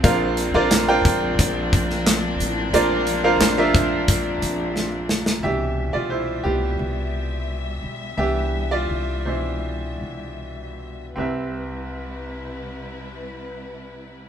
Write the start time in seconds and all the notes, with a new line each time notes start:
Already playing: C4
0.04 A#1 A#2 F3 A#3 D4 F4 A#4 C5 F5, kick, closed hi-hat
0.37 closed hi-hat
0.54 A#1 D4 F4 A#4 C5 D5
0.71 snare, clap, closed hi-hat
0.88 D4 F4 A#4 C5 G5
1.05 A#1, kick, closed hi-hat
1.39 A#1, kick, closed hi-hat
1.73 kick, closed hi-hat
1.90 snare
2.07 snare, clap, closed hi-hat
2.39 A1, closed hi-hat
2.73 A#1 A#2 D4 F4 A#4 C5 D5, closed hi-hat
3.07 closed hi-hat
3.24 D4 F4 A#4 C5 F5
3.41 A#1, snare, clap, closed hi-hat
3.58 D4 F4 A#4 C5 E5
3.75 kick, closed hi-hat
4.08 kick, closed hi-hat
4.42 A#1, closed hi-hat
4.76 snare
5.09 snare
5.26 snare
5.43 C2 B2 E3 G3 D4 G4 E5
5.93 C2 F4 D5
6.10 E4 C5
6.44 C2 B3 G4
6.79 C2
7.83 B1
8.17 C2 E3 B3 D4 G4 E5
8.71 F4 D5
8.90 C2
9.25 B2 E3 D4 E4 C5
10.01 C2
11.16 C2 C3 G3 C4 E4 G4 B4 E5